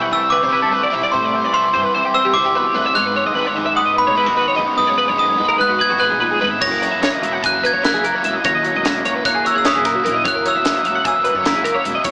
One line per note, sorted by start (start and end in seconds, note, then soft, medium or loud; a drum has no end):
0.00 0.49 C3 medium
0.00 1.32 E3 medium
0.00 0.49 G3 medium
0.00 0.11 B3 medium
0.00 0.49 C4 medium
0.00 0.50 E4 medium
0.00 0.12 F#5 medium
0.00 0.15 G6 medium
0.11 0.38 C3 medium
0.11 0.22 A3 medium
0.11 0.23 G5 medium
0.11 0.33 E6 medium
0.23 0.33 E5 medium
0.30 1.11 C4 medium
0.30 0.43 B4 medium
0.30 0.88 D6 medium
0.43 0.60 C3 medium
0.43 0.52 C5 medium
0.49 0.89 C3 medium
0.49 0.71 G3 loud
0.49 0.70 C4 loud
0.49 0.69 E4 loud
0.49 2.96 E4 medium
0.49 0.62 B4 medium
0.62 0.81 G2 medium
0.62 0.72 A4 medium
0.70 0.90 G3 soft
0.70 0.82 A3 medium
0.70 0.91 C4 medium
0.70 0.92 E4 medium
0.70 0.83 B4 medium
0.83 0.94 D5 medium
0.90 1.02 B1 medium
0.90 1.11 C3 loud
0.90 1.11 C3 medium
0.90 1.11 G3 medium
0.90 1.11 C4 loud
0.90 1.12 E4 loud
0.90 1.03 E5 medium
1.03 1.13 D5 medium
1.12 1.40 A2 loud
1.12 1.51 C3 medium
1.12 1.33 C3 medium
1.12 1.52 G3 medium
1.12 1.53 C4 loud
1.12 1.53 E4 loud
1.12 1.24 C5 medium
1.12 1.53 C6 medium
1.24 1.35 D5 medium
1.34 1.72 E3 medium
1.34 1.45 C5 medium
1.45 1.71 B1 medium
1.45 1.53 D5 medium
1.52 1.94 C3 medium
1.52 1.73 G3 medium
1.52 1.64 A3 medium
1.52 1.72 C4 medium
1.52 1.71 E4 medium
1.52 1.64 E5 medium
1.52 2.11 C6 medium
1.64 1.73 D5 medium
1.73 1.84 G2 medium
1.73 2.95 E3 medium
1.73 2.34 G3 medium
1.73 2.34 C4 medium
1.73 2.35 E4 medium
1.73 1.84 C5 medium
1.84 1.94 B4 medium
1.95 2.13 C2 medium
1.95 2.05 C5 medium
2.05 2.15 G4 medium
2.14 2.93 C4 medium
2.14 2.25 C5 medium
2.14 2.36 E6 medium
2.25 2.43 C2 medium
2.25 2.35 G4 medium
2.34 2.53 C3 medium
2.34 2.73 C3 medium
2.34 2.56 G3 loud
2.34 2.55 C4 loud
2.34 2.54 E4 loud
2.34 2.45 C5 medium
2.34 2.91 D6 medium
2.45 2.63 E2 medium
2.45 2.55 G4 medium
2.54 2.75 B2 medium
2.54 2.74 G3 medium
2.54 2.75 C4 medium
2.54 2.75 E4 medium
2.54 2.66 B4 medium
2.66 2.75 G4 medium
2.73 2.94 E2 medium
2.73 2.94 A2 medium
2.73 2.94 C3 medium
2.73 2.94 G3 medium
2.73 2.95 C4 loud
2.73 2.95 E4 loud
2.73 2.85 B4 medium
2.86 2.95 E5 medium
2.94 3.23 G#1 medium
2.94 4.15 G#2 medium
2.94 4.58 G#2 medium
2.94 3.33 D#3 medium
2.94 3.35 G#3 loud
2.94 3.36 B3 loud
2.94 3.36 D#4 loud
2.94 3.06 C#5 medium
2.94 3.79 F#6 medium
3.06 3.16 B4 medium
3.14 3.57 G#3 medium
3.14 3.26 C#5 medium
3.26 3.44 G#1 medium
3.26 3.35 D#5 medium
3.35 3.76 D#3 medium
3.35 3.56 G#3 medium
3.35 3.77 B3 medium
3.35 3.56 B3 medium
3.35 3.55 D#4 medium
3.35 3.46 B4 medium
3.46 3.56 C#5 medium
3.55 3.75 F#1 medium
3.55 4.15 G#3 medium
3.55 4.98 G#3 medium
3.55 4.15 B3 medium
3.55 4.16 D#4 medium
3.55 3.65 D#5 medium
3.66 3.76 E5 medium
3.76 4.04 G#2 medium
3.76 4.37 B3 medium
3.76 3.85 F#5 medium
3.76 3.96 D#6 medium
3.86 3.96 D#5 medium
3.96 5.81 D#4 medium
3.96 4.07 B4 medium
3.96 4.55 B5 loud
4.07 4.25 G#2 medium
4.07 4.17 C#5 medium
4.15 4.53 G#2 medium
4.15 4.54 D#3 medium
4.15 4.37 G#3 medium
4.15 4.35 B3 loud
4.15 4.35 D#4 loud
4.15 4.26 E4 medium
4.15 4.27 B4 medium
4.26 4.46 D#2 medium
4.26 4.78 F#4 medium
4.26 4.37 A#4 medium
4.36 4.55 G#3 medium
4.36 4.55 B3 medium
4.36 4.76 B3 medium
4.36 4.56 D#4 medium
4.36 4.47 B4 medium
4.48 4.56 C#5 medium
4.55 4.67 F#1 medium
4.55 4.75 G#2 medium
4.55 4.76 D#3 loud
4.55 4.77 G#3 medium
4.55 4.76 B3 loud
4.55 4.77 D#4 loud
4.55 4.67 D#5 medium
4.59 4.77 G#2 medium
4.67 4.77 C#5 medium
4.76 5.05 F#2 loud
4.76 5.39 G#2 medium
4.76 6.21 G#2 medium
4.76 5.15 D#3 loud
4.76 5.16 G#3 medium
4.76 5.16 B3 loud
4.76 5.18 D#4 loud
4.76 4.87 B4 loud
4.76 5.18 D#6 loud
4.87 4.97 C#5 medium
4.98 5.39 G#3 medium
4.98 5.08 B4 medium
5.08 5.36 F#1 medium
5.08 5.18 C#5 medium
5.16 5.58 D#3 medium
5.16 5.39 G#3 medium
5.16 5.37 B3 medium
5.16 5.60 B3 medium
5.16 5.37 D#4 medium
5.16 5.29 D#5 medium
5.16 5.61 D#6 medium
5.29 5.39 C#5 medium
5.37 5.49 D#2 medium
5.37 5.98 G#3 medium
5.37 6.64 G#3 medium
5.37 5.98 B3 medium
5.37 5.99 D#4 medium
5.37 5.48 B4 medium
5.49 5.58 A#4 medium
5.58 5.78 G#1 medium
5.58 6.60 B3 medium
5.58 5.69 B4 medium
5.58 5.81 F#6 loud
5.69 5.80 F#4 medium
5.79 7.87 D#4 medium
5.79 5.90 B4 medium
5.79 6.00 G#6 loud
5.90 6.09 G#1 medium
5.90 6.00 F#4 medium
5.97 6.37 G#2 medium
5.97 6.21 B2 medium
5.97 6.38 D#3 loud
5.97 6.19 G#3 loud
5.97 6.18 B3 loud
5.97 6.17 D#4 loud
5.97 6.10 B4 medium
5.97 6.63 F#6 medium
6.10 6.29 B1 medium
6.10 6.20 G#4 medium
6.18 6.41 A#2 medium
6.18 6.39 G#3 medium
6.18 6.38 B3 medium
6.18 6.40 D#4 medium
6.18 6.30 B4 medium
6.31 6.41 G#4 medium
6.38 6.58 G#2 medium
6.38 6.61 G#2 medium
6.38 6.59 D#3 loud
6.38 6.60 G#3 medium
6.38 6.60 B3 loud
6.38 6.60 D#4 loud
6.38 6.51 B4 medium
6.42 6.59 G#1 medium
6.51 6.61 E5 medium
6.59 6.88 F#1 medium
6.59 7.24 F#2 medium
6.59 8.22 F#2 medium
6.59 6.99 C#3 medium
6.59 7.00 E3 medium
6.59 7.01 A#3 medium
6.59 7.02 E4 loud
6.59 6.71 C#5 medium
6.59 7.39 A#6 loud
6.59 kick loud
6.59 crash medium
6.72 6.82 A#4 medium
6.82 7.21 F#3 medium
6.82 6.91 C#5 medium
6.82 closed hi-hat medium
6.92 7.10 F#1 medium
6.92 7.02 E5 medium
7.00 7.42 C#3 medium
7.00 7.22 E3 medium
7.00 7.21 A#3 medium
7.00 7.43 A#3 medium
7.00 7.20 E4 medium
7.00 7.12 C#5 medium
7.00 snare loud
7.00 closed hi-hat medium
7.12 7.23 D#5 medium
7.21 7.40 E1 medium
7.21 7.83 E3 medium
7.21 8.62 F#3 medium
7.21 7.83 A#3 medium
7.21 7.83 E4 medium
7.21 7.33 E5 medium
7.21 closed hi-hat medium
7.33 7.43 F#5 medium
7.43 7.70 F#2 medium
7.43 8.04 A#3 medium
7.43 7.54 G#5 medium
7.43 7.65 F#6 loud
7.43 kick loud
7.43 closed hi-hat medium
7.54 7.64 E5 medium
7.64 7.73 B4 medium
7.64 7.86 G#6 loud
7.64 closed hi-hat medium
7.73 7.91 F#2 medium
7.73 7.84 C#5 medium
7.82 8.22 F#2 medium
7.82 8.22 C#3 loud
7.82 8.04 E3 loud
7.82 8.04 A#3 loud
7.82 9.65 E4 medium
7.82 8.03 E4 medium
7.82 7.94 A#4 medium
7.82 8.47 F#6 medium
7.82 snare loud
7.82 closed hi-hat medium
7.94 8.12 C#2 medium
7.94 8.04 G#4 medium
8.03 8.23 E3 medium
8.03 8.24 A#3 medium
8.03 8.84 A#3 medium
8.03 8.24 E4 medium
8.03 8.15 A#4 medium
8.03 closed hi-hat medium
8.15 8.24 C#5 medium
8.22 8.33 E1 medium
8.22 8.43 F#2 medium
8.22 8.44 F#2 medium
8.22 8.44 C#3 medium
8.22 8.45 E3 loud
8.22 8.45 A#3 loud
8.22 8.45 E4 loud
8.22 8.35 E5 medium
8.22 closed hi-hat medium
8.35 8.45 D#5 medium
8.44 8.71 D#2 loud
8.44 9.07 F#2 loud
8.44 10.04 F#2 medium
8.44 8.82 C#3 medium
8.44 8.84 E3 loud
8.44 8.84 A#3 loud
8.44 8.84 E4 loud
8.44 8.54 C#5 loud
8.44 9.21 A#6 medium
8.44 kick loud
8.44 closed hi-hat loud
8.55 8.66 D#5 medium
8.63 9.04 F#3 medium
8.63 8.75 C#5 medium
8.63 closed hi-hat medium
8.76 9.01 E1 medium
8.76 8.86 D#5 medium
8.83 9.24 C#3 medium
8.83 9.06 E3 medium
8.83 9.05 A#3 medium
8.83 9.24 A#3 medium
8.83 9.03 E4 medium
8.83 8.95 E5 medium
8.83 snare loud
8.83 closed hi-hat loud
8.95 9.05 D#5 medium
9.04 9.14 C#2 medium
9.04 9.64 E3 medium
9.04 10.45 F#3 medium
9.04 9.65 A#3 medium
9.04 9.65 E4 medium
9.04 9.15 C#5 medium
9.04 closed hi-hat medium
9.15 9.25 B4 medium
9.24 9.43 F#1 medium
9.24 9.85 A#3 medium
9.24 9.35 C#5 medium
9.24 9.46 F#6 medium
9.24 kick loud
9.24 snare soft
9.24 closed hi-hat loud
9.34 9.45 G#4 medium
9.45 9.55 C#5 medium
9.45 9.57 E6 medium
9.45 closed hi-hat medium
9.55 9.73 F#1 medium
9.55 9.65 G#4 medium
9.55 9.65 E6 medium
9.63 10.02 F#2 medium
9.63 10.02 C#3 loud
9.63 9.85 E3 loud
9.63 9.84 A#3 loud
9.63 9.83 E4 loud
9.63 11.46 E4 medium
9.63 9.75 C#5 medium
9.63 10.28 D#6 medium
9.63 snare loud
9.63 closed hi-hat medium
9.75 9.94 A#1 medium
9.75 9.85 G#4 medium
9.83 10.04 E3 soft
9.83 10.04 A#3 medium
9.83 10.65 A#3 medium
9.83 10.05 E4 medium
9.83 9.95 A#4 medium
9.83 kick medium
9.83 snare soft
9.83 closed hi-hat medium
9.95 10.04 F#4 medium
10.03 10.24 A#1 medium
10.03 10.23 F#2 medium
10.03 10.26 F#2 medium
10.03 10.23 C#3 medium
10.03 10.25 E3 loud
10.03 10.25 A#3 loud
10.03 10.25 E4 medium
10.03 10.15 A#4 medium
10.03 closed hi-hat medium
10.15 10.24 D#5 medium
10.24 10.52 F#1 loud
10.24 10.87 F#2 medium
10.24 11.84 F#2 medium
10.24 10.62 C#3 medium
10.24 10.64 E3 loud
10.24 10.64 A#3 loud
10.24 10.65 E4 loud
10.24 10.35 C#5 loud
10.24 kick loud
10.24 closed hi-hat medium
10.28 10.47 F#6 medium
10.35 10.45 A#4 medium
10.45 10.85 F#3 medium
10.45 10.56 C#5 medium
10.45 11.07 E6 loud
10.45 closed hi-hat medium
10.56 10.73 F#1 medium
10.56 10.66 E5 medium
10.63 11.04 C#3 medium
10.63 10.86 E3 medium
10.63 10.84 A#3 medium
10.63 11.05 A#3 medium
10.63 10.83 E4 medium
10.63 10.76 C#5 medium
10.63 snare loud
10.63 closed hi-hat medium
10.76 10.85 D#5 medium
10.84 11.03 E1 medium
10.84 11.43 E3 medium
10.84 12.03 F#3 medium
10.84 11.44 A#3 medium
10.84 11.44 E4 medium
10.84 10.95 E5 medium
10.84 closed hi-hat medium
10.96 11.05 F#5 medium
11.05 11.32 F#2 medium
11.05 11.65 A#3 medium
11.05 11.14 G#5 medium
11.05 12.11 E6 medium
11.05 kick loud
11.05 closed hi-hat medium
11.14 11.25 E5 medium
11.24 11.35 B4 medium
11.24 closed hi-hat medium
11.34 11.52 F#2 medium
11.34 11.45 C#5 medium
11.43 11.83 F#2 medium
11.43 11.84 C#3 loud
11.43 11.64 E3 loud
11.43 11.63 A#3 loud
11.43 11.62 E4 loud
11.43 12.11 E4 medium
11.43 11.54 A#4 medium
11.43 snare loud
11.43 closed hi-hat medium
11.54 11.73 C#2 medium
11.54 11.64 G#4 medium
11.63 11.84 E3 medium
11.63 11.84 A#3 medium
11.63 12.04 A#3 medium
11.63 11.85 E4 medium
11.63 11.75 A#4 medium
11.63 closed hi-hat medium
11.74 11.85 C#5 medium
11.84 11.94 E1 medium
11.84 12.02 F#2 medium
11.84 12.03 F#2 medium
11.84 12.03 C#3 loud
11.84 12.03 E3 loud
11.84 12.03 A#3 loud
11.84 12.04 E4 loud
11.84 11.95 E5 medium
11.84 closed hi-hat medium
11.95 12.04 D#5 medium
12.04 12.11 D#2 medium
12.04 12.11 F#2 loud
12.04 12.11 F#2 medium
12.04 12.11 C#3 medium
12.04 12.11 E3 medium
12.04 12.11 A#3 loud
12.04 12.11 E4 loud
12.04 12.11 C#5 medium
12.04 kick loud
12.04 closed hi-hat medium